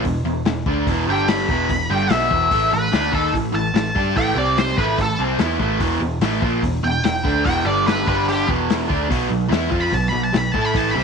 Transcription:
0.03 E1 E2 B2, kick, open hi-hat
0.24 E1 E2 B2
0.45 E1 E2 B2, snare, open hi-hat
0.66 D2 D3 A3 D4, kick
0.87 E1 E2 B2 E3, kick, open hi-hat
1.08 G1 G2 D3 G3 G5
1.28 B5, snare, open hi-hat
1.49 E1 E2 B2 E3, kick
1.69 E1 E2 B2, kick, open hi-hat
1.90 G1 G2 D3 G3 G5
2.10 B1 B2 F#3 B3 E5, snare, open hi-hat
2.31 E1 E2 B2 E3, kick
2.51 A1 A2 E3 A3, kick, open hi-hat
2.71 A1 A2 E3 B4
2.92 D2 D3 A3 D4, snare, open hi-hat
3.11 D#2 D#3 A#3 D#4 A4, kick
3.33 A1 A2 E3, kick, open hi-hat
3.53 A1 A2 E3 A5
3.74 A1 A2 E3 A5, snare, open hi-hat
3.95 G2 G3 D4 G4, kick
4.15 A1 A2 E3 A3 G5, kick, open hi-hat
4.35 C2 C3 G3 C4 D5
4.57 C5, snare, open hi-hat
4.78 A1 A2 E3 A3 B4, kick
4.98 A1 A2 E3 A4, kick, open hi-hat
5.19 C2 C3 G3 C4
5.38 E2 E3 B3 E4, snare, open hi-hat
5.59 A1 A2 E3 A3, kick
5.79 E1 E2 B2 E3, kick, open hi-hat
6.00 E1 E2 B2
6.20 A1 A2 E3 A3, snare, open hi-hat
6.41 A#1 A#2 F3 A#3, kick
6.63 E1 E2 B2, kick, open hi-hat
6.83 E1 E2 B2 G5
7.04 E1 E2 B2 G5, snare, open hi-hat
7.23 D2 D3 A3 D4, kick
7.44 E1 E2 B2 E3 G5, kick, open hi-hat
7.65 G1 G2 D3 G3 D5
7.86 B4, snare, open hi-hat
8.06 G1 G2 D3 G3 B4, kick, snare
8.28 G4, open hi-hat
8.48 E1 E2 B2 E3, kick
8.70 snare, open hi-hat
8.89 D2 D3 A3 D4, kick
9.09 B1 B2 F#3 B3, kick, open hi-hat
9.29 B1 B2 F#3
9.49 E2 E3 B3 E4, snare, open hi-hat
9.69 F2 F3 C4 F4, kick
9.80 B5
9.91 B1 B2 F#3 A5, kick, open hi-hat
10.08 B2 F#3 B5
10.14 B1
10.24 A5
10.33 B1 B2 F#3, snare, open hi-hat
10.37 B5
10.52 A2 A3 E4 A4 A5, kick
10.65 B5
10.73 A1 A2 E3 A3 A5, kick, open hi-hat
10.91 C3 G3 B5
10.96 C2 C4

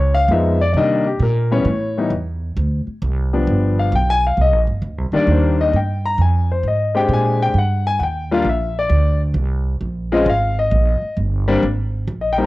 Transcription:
Already playing: C#2 C#5
0.14 F5
0.28 F2 F3 G#3 B3 D#4 E5
0.61 D5
0.73 C3 D#3 G3 A#3 D5
0.77 D4 D#5
1.06 G4
1.20 A#2 A#4
1.51 E3 G3 B3 C#4 C#5
1.65 A2
1.98 E3 G3 B3 D#4
2.10 E2
2.57 D2
2.87 muted upright bass stroke
3.02 C2
3.33 F3 G3 B3 D4
3.47 G1
3.79 F5
3.92 B1 G5
4.10 G#5
4.27 F5
4.37 C2
4.41 D#5
4.53 A#1
4.67 G1
4.82 D2
4.98 C2
5.12 A#1 D#3 G3 A#3 D4
5.16 D5
5.27 D#2
5.32 C5
5.61 D#5
5.73 G2 G5
6.05 A#5
6.18 F2 G#5
6.51 C5
6.63 G#2
6.68 D#5
6.94 G#3 C4 D4 G4 G5
7.09 A#2
7.13 G#5
7.42 G5
7.54 G2
7.58 F#5
7.87 G#5
7.99 D#2 F#5
8.03 G5
8.31 G3 A#3 D4 F4 F5
8.44 A#1
8.49 E5
8.79 D5
8.90 D2
9.34 C2
9.81 A#1
10.12 G#3 C4 C#4 F4 D#5
10.26 G#1 F5
10.59 D#5
10.71 A#1
11.02 muted upright bass stroke
11.17 G1
11.48 G3 A#3 C4 D4
11.63 G#1
12.08 A#1
12.21 D#5
12.33 G5
12.38 G3 A#3 C4 D#4

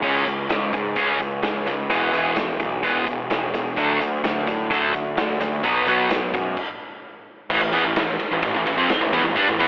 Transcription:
0.02 C#2 C#3 G#3 C#4, kick, crash
0.26 C#2 C#3 G#3, closed hi-hat
0.49 C#2 C#3 G#3, snare, closed hi-hat
0.73 G#2 C#3 G#3, kick, closed hi-hat
0.96 C#2 C#3 G#3 C#4, kick, closed hi-hat
1.19 C#2 C#3 G#3, kick, closed hi-hat
1.42 C#2 C#3 G#3, snare, closed hi-hat
1.67 C#2 C#3 G#3, closed hi-hat
1.90 E1 E2 B2 E3 G#3 B3, kick, closed hi-hat
2.12 E1 E2 B2 E3 G#3 B3, closed hi-hat
2.36 E1 E2 B2 E3 G#3, snare, closed hi-hat
2.60 B1 E2 B2 E3 G#3, kick, closed hi-hat
2.83 E1 E2 B2 E3 G#3 B3, kick, closed hi-hat
3.07 E1 E2 B2 E3 G#3, kick, closed hi-hat
3.30 E1 E2 B2 E3 G#3, snare, closed hi-hat
3.53 E1 E2 B2 E3 G#3, closed hi-hat
3.76 D2 D3 F#3 A3 D4, kick, closed hi-hat
4.00 D2 D3 F#3 A3, closed hi-hat
4.23 D2 D3 F#3 A3, snare, closed hi-hat
4.47 A2 D3 F#3 A3, kick, closed hi-hat
4.71 D2 D3 F#3 A3 D4, kick, closed hi-hat
4.94 D2 D3 F#3 A3, kick, closed hi-hat
5.17 D2 D3 F#3 A3, snare, closed hi-hat
5.40 D2 D3 F#3 A3, closed hi-hat
5.63 B1 B2 F#3 B3, kick, closed hi-hat
5.87 B1 B2 F#3 B3, closed hi-hat
6.10 B1 B2 F#3, snare, closed hi-hat
6.34 F#2 B2 F#3, kick, closed hi-hat
6.57 kick, crash
7.50 A1 A2 E3, kick, crash
7.62 A1 A2 E3
7.72 E2 E3 B3, ride
7.84 A1 A2 E3
7.96 A1 A2 E3, snare, ride
8.19 ride
8.31 A1 A2 E3
8.42 A1 A2 E3, kick, ride
8.54 A1 A2 E3
8.66 A1 A2 E3, ride
8.77 F2 F3 C4
8.89 muted picked electric bass stroke, muted distorted electric guitar stroke, snare, ride
9.01 A1 A2 E3
9.13 E2 E3 B3, ride
9.23 A1 A2 E3
9.36 G2 G3 D4, kick, ride
9.48 A1 A2 E3
9.58 E2 E3 B3, ride

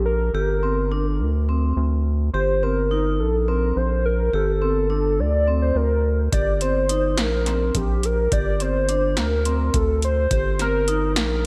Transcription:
Already playing: A#1
0.06 A#4
0.34 G1 G4 A#4
0.63 C4
0.92 D4
1.07 A4
1.20 D2
1.49 C4
1.77 D2
2.33 G1 G4 C5
2.63 C4 A#4
2.91 D#4
3.19 A#1 A4
3.48 C4 A#4
3.76 A#1 C5
4.06 A#4
4.33 G1 G4 A4
4.62 C4
4.90 D4
5.19 D2 D5
5.47 C4
5.62 C5
5.75 D2 A#4
6.33 G1 G4 D5, kick, closed hi-hat
6.61 C4 C5, closed hi-hat
6.89 D#4, closed hi-hat
7.18 A#1 A#4, snare, closed hi-hat
7.46 C4, snare, closed hi-hat
7.75 A#1 G4, kick, closed hi-hat
8.03 A#4, closed hi-hat
8.32 G1 G4 D5, kick, closed hi-hat
8.60 C4 C5, closed hi-hat
8.89 D4, closed hi-hat
9.17 D2 A#4, snare, closed hi-hat
9.45 C4, closed hi-hat
9.74 D2 A4, kick, closed hi-hat
10.02 C5, closed hi-hat
10.31 G1 G4 C5, kick, closed hi-hat
10.59 C4 A#4, snare, closed hi-hat
10.88 D#4, closed hi-hat
11.16 A#1 A#4, snare, closed hi-hat

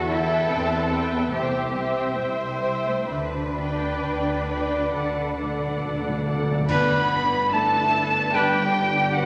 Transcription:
Already playing: E2 E3 E4 F#4 A4
0.10 B3 E4 B4 E5 G5
0.51 E2 C4 G4
0.90 B4 E5 G5
1.13 B3
1.31 C2 C3 A3 G4 C5 E5 G5
1.73 G3 C4 C5 E5 G5
2.15 C2 G3 E4 C5
2.61 G4 C5 E5 G5
2.87 A3
3.10 D2 D3 D4 B4
3.56 B3 B4 D5 G5
4.02 D2 G4
4.48 B4 D5 G5
4.91 D2 D3 A4 D5 F#5
5.09 D3
5.18 D3
5.25 D3
5.34 D3 A3 D5
5.38 A4 F#5
5.43 D3
5.50 D3
5.59 D3
5.67 D3
5.75 D3
5.81 D2 D3 F#4
5.92 D3
6.00 D3
6.08 D3
6.17 D3
6.25 D3 A4 D5 F#5
6.34 D3
6.42 D3
6.51 D3
6.59 D3
6.69 G1 G2 D3 B3 D4 B4 B5, concert bass drum, crash
7.52 A3 E4 A4 D5 A5
7.94 B4
8.33 D3 G3 D4 G4 B4 G5
9.14 F#4 B4 D5 F#5
9.18 F#3 F#5

